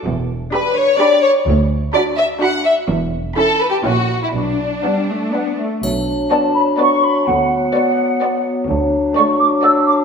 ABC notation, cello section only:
X:1
M:3/4
L:1/8
Q:1/4=126
K:Bm
V:1 name="Cello section" clef=bass
E,,2 z4 | D,,2 z4 | E,,2 z2 ^A,,2 | B,,2 G, A, B, A, |
B,,2 z4 | D,,2 z4 | D,,2 z4 |]